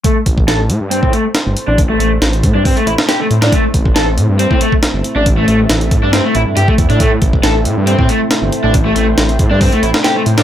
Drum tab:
HH |x-x-x-x-x-x-x-x-|x-x-xxx-oxx-x-xx|x-x-x-x-x-x-x-x-|x-x-xxx-x-x-x-xx|
SD |----o-------o---|----o------oo--o|----o-------o---|----o---o-------|
BD |o-oo-----o------|o-----o-o-------|o-oo-----o-o----|o-----o------oo-|

HH |x-x-x-x-x-x-x-x-|x-x-xxx-oxx-x-xx|
SD |----o-------o---|----o------oo--o|
BD |o-oo-----o------|o-----o-o-------|